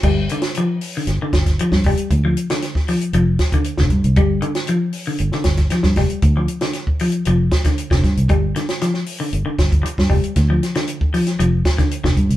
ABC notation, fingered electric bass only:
X:1
M:4/4
L:1/16
Q:1/4=116
K:Cdor
V:1 name="Fingered electric bass" clef=bass
G,,,2 z6 G,,, z G,,,2 z G,, F,,, z | D,,2 z6 F,,,2 z3 F,,, G,, C,, | G,,,2 z6 G,,, z G,,,2 z G,, F,,, z | D,,2 z6 F,,,2 z3 F,,, G,, C,, |
G,,,2 z6 G,,, z G,,,2 z G,, F,,, z | D,,2 z6 F,,,2 z3 F,,, G,, C,, |]